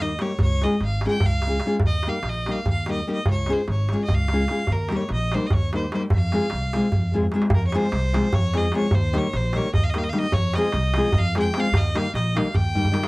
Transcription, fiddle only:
0.01 0.23 D#5 loud
0.21 0.40 C#5 medium
0.42 0.65 C#5 loud
0.63 0.82 D#5 medium
0.85 1.04 F5 medium
1.07 1.27 G5 medium
1.26 1.69 F5 loud
1.86 2.10 D#5 loud
2.08 2.30 F5 medium
2.29 2.53 D#5 medium
2.51 2.69 F5 medium
2.70 2.88 F5 medium
2.91 3.07 D#5 medium
3.12 3.28 D#5 medium
3.30 3.54 C#5 medium
3.53 3.70 C5 medium
3.71 3.99 C#5 medium
4.04 4.16 D#5 medium
4.14 4.73 F5 loud
4.72 4.97 A#4 medium
4.96 5.12 C#5 medium
5.13 5.36 D#5 medium
5.34 5.48 C5 medium
5.47 5.55 D#5 medium
5.53 5.73 C#5 medium
5.75 5.92 C5 medium
5.94 6.02 C5 medium
6.14 7.12 F5 medium
7.54 7.67 A#4 loud
7.67 7.77 C#5 medium
7.76 8.36 C5 loud
8.34 8.58 C#5 loud
8.57 8.75 D#5 medium
8.76 8.96 C#5 loud
8.94 9.19 C5 loud
9.17 9.37 C#5 loud
9.36 9.58 C5 medium
9.56 9.74 C#5 loud
9.74 9.85 D#5 medium
9.84 9.91 F5 medium
9.89 9.99 D#5 medium
9.98 10.05 F5 medium
10.03 10.11 D#5 medium
10.09 10.20 F5 medium
10.19 10.35 D#5 loud
10.33 10.57 C#5 loud
10.55 11.19 D#5 loud
11.18 11.37 F5 loud
11.39 11.61 G5 loud
11.60 11.78 F5 loud
11.77 11.99 D#5 loud
11.97 12.15 F5 loud
12.15 12.38 D#5 loud
12.36 12.57 F5 medium
12.55 13.08 G5 loud

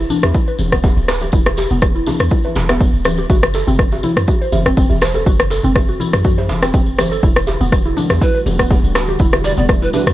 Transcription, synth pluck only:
0.10 0.22 D4 loud
0.35 0.42 E4 loud
0.48 0.54 B4 medium
0.72 0.79 B3 loud
0.84 0.96 B3 medium
1.08 1.20 B4 medium
1.22 1.32 G4 medium
1.33 1.40 E4 loud
1.58 1.65 G4 medium
1.71 1.77 B3 loud
1.95 2.06 E4 medium
2.07 2.19 D4 loud
2.31 2.39 E4 loud
2.45 2.51 B4 medium
2.69 2.75 B3 loud
2.81 2.92 B3 medium
3.05 3.17 B4 medium
3.18 3.29 G4 medium
3.30 3.37 F#4 loud
3.54 3.62 A4 medium
3.68 3.74 C4 loud
3.92 4.03 F#4 medium
4.04 4.15 E4 loud
4.28 4.35 F#4 loud
4.41 4.48 C5 medium
4.66 4.72 C4 loud
4.77 4.89 C4 medium
5.02 5.14 C5 medium
5.15 5.25 A4 medium
5.27 5.34 F#4 loud
5.51 5.58 A4 medium
5.64 5.70 C4 loud
5.89 6.00 F#4 medium
6.00 6.12 E4 loud
6.25 6.32 F#4 loud
6.38 6.44 C5 medium
6.63 6.69 C4 loud
6.74 6.86 C4 medium
6.99 7.11 C5 medium
7.12 7.22 A4 medium
7.23 7.30 E4 loud
7.48 7.55 G4 medium
7.61 7.67 B3 loud
7.85 7.96 E4 medium
7.97 8.09 D4 loud
8.21 8.29 E4 loud
8.35 8.41 B4 medium
8.59 8.65 B3 loud
8.71 8.83 B3 medium
8.95 9.07 B4 medium
9.08 9.19 G4 medium
9.20 9.27 E4 loud
9.44 9.52 G4 medium
9.58 9.64 B3 loud
9.82 9.93 E4 medium
9.94 10.06 D4 loud

